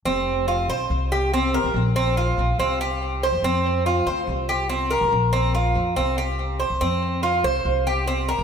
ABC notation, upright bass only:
X:1
M:4/4
L:1/16
Q:1/4=142
K:Cmix
V:1 name="Upright bass" clef=bass
F,,,6 =B,,,2 C,,6- C,, C,, | B,,,6 B,,,2 C,,6- C,, E,, | F,,6 D,,2 C,,6- C,, C,, | B,,,6 F,,2 C,,6- C,, C,, |
F,,6 C,,2 C,,6- C,, C,, |]